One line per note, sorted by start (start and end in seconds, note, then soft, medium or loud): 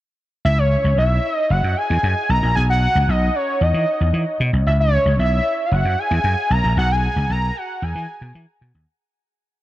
0.45 0.75 C#2 loud
0.45 0.60 E5 loud
0.59 0.98 C#5 medium
0.84 0.94 C#2 medium
0.97 1.18 B1 medium
0.97 1.35 E5 medium
1.35 1.52 D#5 medium
1.50 1.60 F#1 loud
1.50 1.79 F#5 medium
1.64 1.74 F#2 medium
1.77 2.31 G#5 loud
1.90 2.00 E2 medium
2.03 2.13 F#2 loud
2.29 2.39 B1 medium
2.29 2.55 A#5 loud
2.43 2.53 A#1 medium
2.56 2.86 B1 loud
2.56 2.62 G#5 loud
2.70 3.11 F#5 loud
2.95 3.05 C#2 medium
3.08 3.28 B1 medium
3.08 3.37 D#5 loud
3.35 3.64 C#5 medium
3.61 3.71 E2 medium
3.61 4.41 D#5 medium
3.74 3.84 E3 medium
4.01 4.11 E2 medium
4.14 4.24 E3 medium
4.40 4.50 B2 medium
4.53 4.63 C2 medium
4.66 4.96 C#2 loud
4.66 4.72 E5 medium
4.80 5.17 C#5 loud
5.05 5.16 C#2 medium
5.19 5.39 B1 medium
5.19 5.67 E5 medium
5.66 5.74 F5 medium
5.72 5.82 F#1 loud
5.72 6.00 F#5 medium
5.85 5.95 F#2 medium
5.99 6.53 G#5 loud
6.11 6.21 E2 medium
6.24 6.34 F#2 medium
6.50 6.60 B1 medium
6.50 6.77 A#5 loud
6.64 6.74 A#1 medium
6.77 7.07 B1 loud
6.77 6.93 F#5 loud
6.91 7.32 G#5 loud
7.16 7.26 C#2 medium
7.30 7.49 B1 medium
7.30 7.58 A#5 loud
7.57 7.85 F#5 loud
7.82 7.92 E2 loud
7.82 8.62 G#5 medium
7.95 8.05 E3 medium
8.21 8.31 B2 medium
8.35 8.45 E3 medium
8.61 8.71 B2 medium
8.75 8.84 D#2 medium